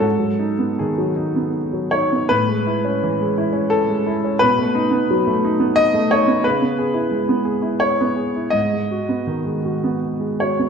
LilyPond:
<<
  \new Staff \with { instrumentName = "Grand piano" } { \time 3/4 \key gis \phrygian \tempo 4 = 84 a'4 gis'4 r8 cis''8 | b'2 a'4 | b'2 dis''8 cis''8 | b'2 cis''4 |
dis''2 r8 cis''8 | }
  \new Staff \with { instrumentName = "Grand piano" } { \time 3/4 \key gis \phrygian gis,16 fis16 dis'16 b16 dis16 fis16 dis'16 b8 fis16 dis'16 b16 | a,16 gis16 e'16 cis'16 e16 gis16 e'16 cis'8 gis16 e'16 cis'16 | b,16 a16 dis'16 b16 fis16 a16 dis'16 b8 a16 dis'16 b16 | cis16 b16 gis'16 e'16 gis16 b16 gis'16 e'8 b16 gis'16 e'16 |
gis,16 gis16 fis'16 b16 dis16 gis16 fis'16 b8 gis16 fis'16 b16 | }
>>